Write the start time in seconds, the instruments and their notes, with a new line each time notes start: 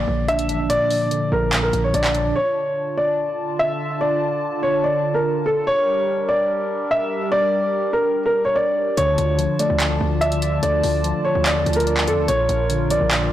Already playing: tine electric piano A#2 D3 F3 A#3, grand piano D5
0.08 808-style bass A#1
0.28 tine electric piano D4, grand piano E5, closed hi-hat
0.39 closed hi-hat
0.49 808-style bass A1, tine electric piano D4, closed hi-hat
0.70 tine electric piano A#2, grand piano D5, closed hi-hat
0.91 open hi-hat
1.11 tine electric piano D3, closed hi-hat
1.32 808-style bass A#1, tine electric piano F3, grand piano A#4
1.53 tine electric piano A#2, clap, closed hi-hat
1.63 grand piano A#4
1.73 808-style bass A#1, closed hi-hat
1.84 grand piano C#5
1.94 808-style bass A#1, tine electric piano D4, grand piano D5, closed hi-hat
2.04 clap, closed hi-hat
2.15 tine electric piano D4, closed hi-hat
2.35 analog synth pad D3 D4 F4 A5, grand piano C#5
2.98 grand piano D5
3.59 grand piano E5
4.01 grand piano D5
4.63 grand piano C#5
4.84 grand piano D5
5.14 grand piano A#4
5.46 grand piano A4
5.66 analog synth pad G3 D4 G4 A#4, grand piano C#5
6.29 grand piano D5
6.91 grand piano E5
7.32 grand piano D5
7.93 grand piano A#4
8.26 grand piano A#4
8.45 grand piano C#5
8.56 grand piano D5
8.97 808-style bass D2, analog synth pad D3 D4 F4 A5, tine electric piano D3, grand piano C#5, closed hi-hat
9.18 808-style bass D2, closed hi-hat
9.39 tine electric piano F3, closed hi-hat
9.59 tine electric piano A3, grand piano D5, closed hi-hat
9.70 808-style bass D2
9.80 tine electric piano D3, clap, closed hi-hat
10.01 808-style bass D2
10.21 tine electric piano D5, grand piano E5, closed hi-hat
10.32 closed hi-hat
10.42 tine electric piano D5, closed hi-hat
10.63 808-style bass D2, tine electric piano D3, grand piano D5, closed hi-hat
10.84 808-style bass D2, open hi-hat
11.04 tine electric piano F3, closed hi-hat
11.25 grand piano C#5
11.35 808-style bass D2
11.46 tine electric piano D3, grand piano D5, clap, closed hi-hat
11.56 808-style bass E2
11.66 808-style bass D2, closed hi-hat
11.73 grand piano A#4, closed hi-hat
11.80 closed hi-hat
11.87 tine electric piano D5, closed hi-hat
11.97 clap
12.08 808-style bass F2, grand piano A4, tine electric piano D5, closed hi-hat
12.18 808-style bass D2
12.28 808-style bass A#1, tine electric piano A#2, analog synth pad A#4, grand piano C#5, closed hi-hat
12.49 808-style bass A#1, closed hi-hat
12.70 tine electric piano D3, closed hi-hat
12.90 tine electric piano F3, grand piano D5, closed hi-hat
13.01 808-style bass A#1
13.11 tine electric piano A#2, clap, closed hi-hat